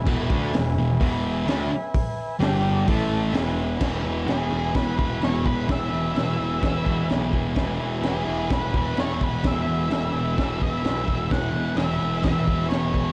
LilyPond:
<<
  \new Staff \with { instrumentName = "Transistor combo organ" } { \time 4/4 \key e \major \tempo 4 = 128 << { r1 | r2 r8 a''8 gis''16 fis''8. | r1 | r1 |
r1 | r1 | r1 | } \\ { <b' e'' gis''>1~ | <b' e'' gis''>4 <g' d'' g''>4 <a' e'' a''>4 <b' e''>4 | <b' e'' gis''>1~ | <b' e'' gis''>1 |
<b' e'' gis''>1~ | <b' e'' gis''>1 | <b' e'' gis''>1 | } >> }
  \new Staff \with { instrumentName = "Lead electric guitar" } { \time 4/4 \key e \major r1 | r1 | r4 gis'4 b'8 b'8 cis''8 b'8 | e''2. r4 |
r4 gis'4 b'8 b'8 cis''8 b'8 | e''2~ e''8 e''4. | fis''4 e''4 e''4 cis''4 | }
  \new Staff \with { instrumentName = "Distorted electric guitar" } { \clef bass \time 4/4 \key e \major <e, b, e>8 <d a d'>8 <e, b,>8 <e, b,>8 <e, b, e>4 <d a d'>8 r8 | r4 <g, d g>4 <a, e a>4 <e, b, e>4 | <e, b, e>8 <b, e>8 <e, b, e>8 <b, e>8 <e, b, e>8 <b, e>8 <e, b, e>4 | <e, b, e>8 <b, e>8 <e, b, e>8 <b, e>8 <e, b, e>8 <b, e>8 <e, b, e>4 |
<e, b, e>8 <b, e>8 <e, b, e>8 <b, e>8 <e, b, e>8 <b, e>8 <e, b, e>4 | <e, b, e>8 <b, e>8 <e, b, e>8 <b, e>8 <e, b, e>8 <b, e>8 <e, b, e>4 | <e, b, e>8 <b, e>8 <e, b, e>8 <b, e>8 <e, b, e>8 <b, e>8 <e, b, e>4 | }
  \new Staff \with { instrumentName = "Picked electric bass" } { \clef bass \time 4/4 \key e \major e,,8 d,8 e,,8 e,,8 e,,4 d,8 r8 | r4 g,,4 a,,4 e,,4 | e,,8 e,,8 e,,8 e,,8 e,,8 e,,8 e,,8 e,,8 | e,,8 e,,8 e,,8 e,,8 e,,8 e,,8 b,,8 e,,8 |
e,,8 e,,8 e,,8 e,,8 e,,8 e,,8 e,,8 e,,8 | e,,8 e,,8 e,,8 e,,8 e,,8 e,,8 b,,8 e,,8 | e,,8 e,,8 e,,8 e,,8 e,,8 e,,8 e,,8 e,,8 | }
  \new DrumStaff \with { instrumentName = "Drums" } \drummode { \time 4/4 <cymc bd>8 bd8 <hho sn>4 <hho bd>4 <hho sn>4 | <hho bd>4 <hho sn>4 <hho bd>4 <hho sn>4 | <cymc bd sn>4 <cymc sn>4 <cymc bd sn>8 bd8 <cymc sn>8 bd8 | <cymc bd sn>4 <cymc sn>4 <cymc bd sn>8 bd8 <cymc sn>8 bd8 |
<cymc bd sn>4 <cymc sn>4 <cymc bd sn>8 bd8 <cymc sn>8 bd8 | <cymc bd sn>4 <cymc sn>4 <cymc bd sn>8 bd8 <cymc sn>8 bd8 | <cymc bd sn>4 <cymc sn>4 <cymc bd sn>8 bd8 <cymc sn>8 bd8 | }
>>